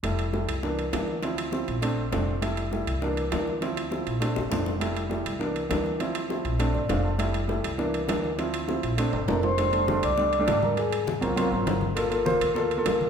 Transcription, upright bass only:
\new Staff \with { instrumentName = "Upright bass" } { \clef bass \time 4/4 \key f \major \tempo 4 = 201 f,,4. c,4. d,4~ | d,4. bes,,4. f,,4~ | f,,4. c,4. d,4~ | d,4. bes,,4 g,,8 f,,4~ |
f,,4. c,4. d,4~ | d,4. bes,,4 g,,8 f,,4~ | f,,4. c,4. d,4~ | d,4. bes,,4 g,,8 f,,4~ |
f,,4. c,4. aes,,4~ | aes,,4. c,4 aes,,8 g,,4~ | g,,4. d,4. e,4 | }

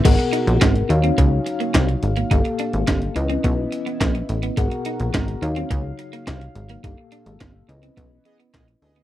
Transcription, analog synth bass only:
\new Staff \with { instrumentName = "Analog synth bass" } { \clef bass \time 4/4 \key ees \major \tempo 4 = 106 aes,,16 r8 bes,,16 aes,,8 ees,8 des,8 r8 c,8 aes,,8 | g,,16 r8 aes,,16 g,,8 des,8 ces,8 r8 bes,,8 a,,8 | aes,,16 r8 bes,,16 aes,,8 ees,8 des,8 r8 c,8 aes,,8 | g,,16 r8 aes,,16 g,,8 des,8 ces,8 r8 bes,,8 d,8 | }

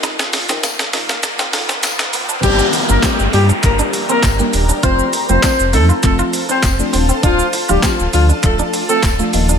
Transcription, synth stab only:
\new Staff \with { instrumentName = "Synth stab" } { \time 4/4 \key g \minor \tempo 4 = 100 <ees' f' bes'>8 r16 <ees' f' bes'>8 r16 <ees' f' bes'>8 r8 <ees' f' a'>8. r8. | <g bes d' g'>8 r16 <g bes d' f'>8 r16 <g bes d' g'>16 r16 <g bes d' g'>8. r8 <g bes d' g'>8 r16 | <f a c' f'>8 r16 <f a c' f'>8 r16 <f a c' ees'>16 r16 <f a c' f'>8. r8 <f a c' d'>8 r16 | <f a d' f'>8 r16 <f a d' g'>8 r16 <f a d' f'>16 r16 <f a d' f'>8. r8 <f a d' f'>16 <f bes ees' f'>8 | }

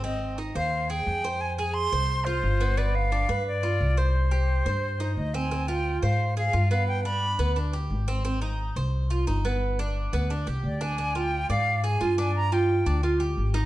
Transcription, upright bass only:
\new Staff \with { instrumentName = "Upright bass" } { \clef bass \time 4/4 \key g \phrygian \tempo 4 = 176 aes,,4. ees,4. f,4~ | f,4. c,4. g,,4~ | g,,4. g,4. c,4~ | c,4. g,4. d,4~ |
d,4. aes,4. g,4~ | g,4. d,4. aes,,4~ | aes,,4. c,4. g,,4~ | g,,4. d,4 c,8 d,4~ |
d,4. aes,4. g,4~ | g,4. d,4. aes,,4 | }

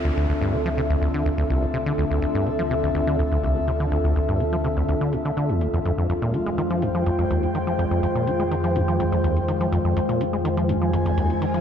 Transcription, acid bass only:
\new Staff \with { instrumentName = "Acid bass" } { \clef bass \time 4/4 \key d \minor \tempo 4 = 124 d,16 d,16 d,16 g,16 d16 f16 c16 d,16 d,16 d16 d,16 d,16 c,16 d,16 c16 d16 | d,16 d,16 d,16 g,16 d16 f16 c16 d,16 d,16 d16 d,16 d,16 c,16 d,16 c16 d16 | d,16 d,16 d,16 g,16 d16 f16 c16 d,16 d,16 d16 a,16 d16 d16 e,16 d,16 e,16 | f,16 f,16 f,16 bes,16 f16 aes16 ees16 f16 f,16 f16 f,16 f,16 ees,16 f,16 ees16 f16 |
f,16 f,16 f,16 bes,16 f16 aes16 ees16 f16 f,16 f16 f,16 f,16 ees,16 f,16 ees16 f16 | f,16 f,16 f,16 bes,16 f16 aes16 ees16 f16 f,16 f16 f,16 f,16 ees,16 f,16 ees16 f16 | }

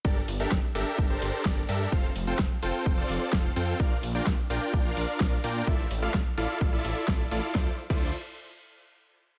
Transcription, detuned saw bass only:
\new Staff \with { instrumentName = "Detuned saw bass" } { \clef bass \time 4/4 \key d \minor \tempo 4 = 128 g,,8 g,,8 g,,16 r16 g,,16 r16 g,,8 g,,16 r16 g,,8 g,8 | f,,8 f,,8 f,,16 r16 f,,16 r16 f,,8 f,,16 r16 f,,8 f,8 | bes,,8 bes,,8 bes,,16 r16 bes,,16 r16 bes,,8 bes,,16 r16 bes,,8 bes,8 | a,,8 a,,8 a,,16 r16 a,,16 r16 a,,8 a,,16 r16 a,,8 a,,16 r16 |
d,16 r8 d,8 r2 r8. | }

